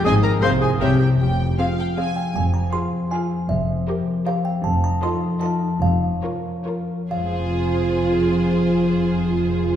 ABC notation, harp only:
X:1
M:3/4
L:1/8
Q:1/4=155
K:Fm
V:1 name="Harp"
[A,,E] [CE] C, [CF] C, [D=E] | F, C F A F C | F, C A C F C | F, C B C G C |
F, E =A E F E | F, D B D F D | [F,A,CFc]6- | [F,A,CFc]6 |]